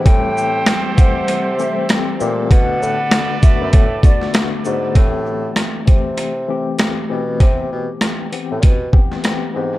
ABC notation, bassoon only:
X:1
M:4/4
L:1/16
Q:"Swing 16ths" 1/4=98
K:Ador
V:1 name="Bassoon" clef=bass
A,,4 z2 C,6 z2 _B,,2 | B,,2 A,, z4 F,, A,,2 z4 ^G,,2 | A,,4 z2 C,6 z2 B,,2 | C,2 B,, z4 A,, B,,2 z4 ^G,,2 |]